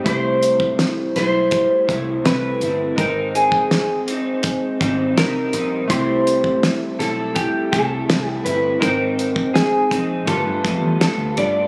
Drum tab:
HH |x-x-x-x-x-x-x-x-|x-x-x-x-x-x-x-x-|x-x-x-x-x-x-x-x-|x-x-x-x-x-x-x-x-|
SD |----o-o-----o---|----o-------o---|----o-o-----o---|----o-------o---|
BD |o--o----o-o-----|o--o----o-o-----|o--o----o-o-----|o--o--o-o-o---o-|